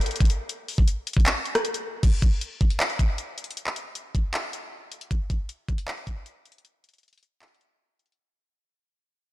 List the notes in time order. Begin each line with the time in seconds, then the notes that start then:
0.01 closed hi-hat
0.06 closed hi-hat
0.11 closed hi-hat
0.16 closed hi-hat
0.20 kick, closed hi-hat
0.25 closed hi-hat
0.30 closed hi-hat
0.49 closed hi-hat
0.68 open hi-hat
0.78 kick
0.88 closed hi-hat
1.07 closed hi-hat
1.13 kick, closed hi-hat
1.20 closed hi-hat
1.26 clap, closed hi-hat
1.45 closed hi-hat
1.55 cross-stick, closed hi-hat
1.65 closed hi-hat
1.74 closed hi-hat
2.03 kick, closed hi-hat, crash
2.22 kick, closed hi-hat
2.41 closed hi-hat
2.61 kick, closed hi-hat
2.70 closed hi-hat
2.80 clap, closed hi-hat
2.90 closed hi-hat
2.99 kick, closed hi-hat
3.18 closed hi-hat
3.38 closed hi-hat
3.44 closed hi-hat
3.51 closed hi-hat
3.57 closed hi-hat
3.67 clap
3.76 closed hi-hat
3.95 closed hi-hat
4.15 kick, closed hi-hat
4.34 clap, closed hi-hat
4.53 closed hi-hat
4.92 closed hi-hat
5.01 closed hi-hat
5.11 kick, closed hi-hat
5.30 kick, closed hi-hat
5.49 closed hi-hat
5.68 kick, closed hi-hat
5.78 closed hi-hat
5.88 clap, closed hi-hat
5.97 closed hi-hat
6.07 kick, closed hi-hat
6.26 closed hi-hat
6.45 closed hi-hat
6.52 closed hi-hat
6.58 closed hi-hat
6.65 closed hi-hat
6.84 closed hi-hat
6.89 closed hi-hat
6.94 closed hi-hat
6.98 closed hi-hat
7.03 closed hi-hat
7.08 closed hi-hat
7.13 closed hi-hat
7.18 closed hi-hat
7.23 closed hi-hat
7.42 clap, closed hi-hat
7.48 closed hi-hat
7.54 closed hi-hat
7.61 closed hi-hat
7.99 closed hi-hat
8.06 closed hi-hat
8.12 closed hi-hat